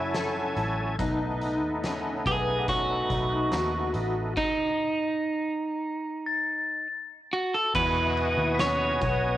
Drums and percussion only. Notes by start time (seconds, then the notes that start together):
0.14 snare, closed hi-hat
0.56 closed hi-hat
0.99 kick, closed hi-hat
1.41 closed hi-hat
1.84 snare, closed hi-hat
2.26 kick, closed hi-hat
2.68 kick, closed hi-hat
3.10 kick, closed hi-hat
3.52 snare, closed hi-hat
3.94 closed hi-hat
4.37 kick, crash
7.75 kick, crash
8.17 ride
8.59 snare, ride, tambourine
9.02 kick, ride